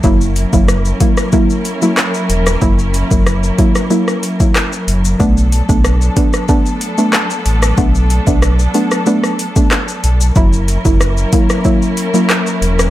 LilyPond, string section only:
\new Staff \with { instrumentName = "String section" } { \time 4/4 \key b \minor \tempo 4 = 93 << { <ais cis' e' ais'>1~ | <ais cis' e' ais'>1 | <a b d' a'>1~ | <a b d' a'>1 |
<ais cis' e' ais'>1 | } \\ { fis1~ | fis1~ | fis1~ | fis1 |
fis1 | } >> }